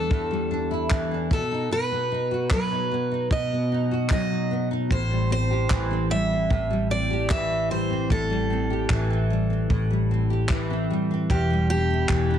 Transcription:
Already playing: E3 G3 D4 E4 A4
0.10 E2, kick
0.31 G3
0.51 D4
0.71 E4
0.91 E3, kick, clap
1.11 D4
1.31 B2 A4, kick
1.51 D#4
1.71 B2 B4
1.91 B3
2.12 D#4
2.31 F#4
2.51 F#3 B4, kick, clap
2.72 D#4
2.91 B3
3.11 D#4
3.31 B2 D#5, kick
3.52 B3
3.72 D#4
3.91 F#4
4.10 F#3 D#5, kick, clap
4.31 D#4
4.51 B3
4.71 D#4
4.90 A1 A2 C5, kick
5.11 G3
5.30 C4 C5
5.51 G4
5.70 A1 E3, kick, clap
5.91 C4
6.10 G3 E5
6.30 C4
6.50 A1 A2, kick
6.70 G3
6.90 C4 D5
7.10 G4
7.30 E3 E5, kick, clap
7.50 C4
7.70 G3 C5
7.90 C4
8.10 A1 A2 A4, kick
8.30 G3
8.50 C4
8.70 G4
8.90 A1 E3, kick, clap
9.10 C4
9.30 G3
9.50 C4
9.70 A1 A2, kick
9.91 G3
10.11 C4
10.30 G4
10.49 E3, kick, clap
10.70 C4
10.91 G3
11.11 C4
11.29 E1 E2 G4, kick
11.50 G3
11.70 D4 G4
11.90 E4
12.09 E1 E3, kick, clap
12.30 D4

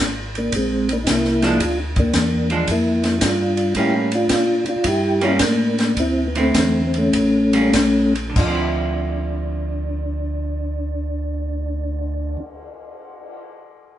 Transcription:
0.00 G#1
0.35 A#3 D4, ride
0.52 A#1 G#3, kick, ride
0.56 C4
0.89 D4, ride
0.93 A#3
1.04 C2 D#4, kick, snare, hi-hat pedal, ride
1.11 A#3 E4
1.25 snare
1.42 F3 G#3 D4, snare, ride
1.60 D2 D4 F4, kick, ride
1.96 A#3 D4, kick, ride
2.13 E2, kick, snare, hi-hat pedal, ride
2.50 F3 G#3 D4, ride
2.67 F2 E4, kick, ride
2.72 A#3
3.04 snare, ride
3.19 G2 E4, kick, snare, hi-hat pedal, ride
3.24 D4 F4
3.57 ride
3.75 A2 G3 A#3 C#4, kick, ride
3.79 E4 G4
4.12 D4 F4, ride
4.29 A#2, kick, snare, hi-hat pedal, ride
4.66 A#2 D4 F4, ride
4.84 G2 E4, kick, ride
4.88 G4
5.21 G3 A#3 C#4 E4, ride
5.39 A2 A#3, kick, snare, hi-hat pedal, ride
5.43 D4
5.78 snare, ride
5.97 D2 C4 E4, kick, ride
6.27 B3
6.35 D3 A3 C4 E4, ride
6.39 C4
6.54 E2, kick, snare, hi-hat pedal, ride
6.87 C4
6.94 ride
6.98 A3 C#4
7.13 A1, kick, ride
7.53 G3 A#3 C#4, ride
7.73 A#1, kick, snare, hi-hat pedal, ride
8.15 ride
8.30 D3
8.36 D2 F3 D4, kick, crash
8.47 C4
8.55 E4
8.79 cymbal swell

